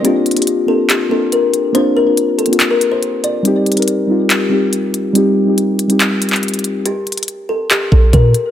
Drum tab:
HH |x-----------x--x--x--x--x-----------------------x-----------------------x-----------x-----------|x-----------------------x-----------x---x---x---x-----------x-----------x-----------x-----------|x-----------x--x--x--x--x-----------------------x-----------------------x-----------x-----------|x-----------------------x-----------x-----x-----x-----------x---x---x---x--x--x--x--x-----------|
CP |------------------------------------------------x-----------------------------------------------|------------------------------------------------x-----------------------------------------------|------------------------------------------------x-----------------------------------------------|------------------------------------------------x-----------------x-----------------------------|
BD |------------------------------------------------------------------------------------------------|------------------------------------------------------------------------------------------------|------------------------------------------------------------------------------------------------|------------------------------------------------------------------------------------------------|

HH |x-----------x--x--x--x--x-----------------------x-----------------------x-----------x-----------|
CP |------------------------------------------------x-----------------------------------------------|
BD |------------------------------------------------------------o-----------o-----------------------|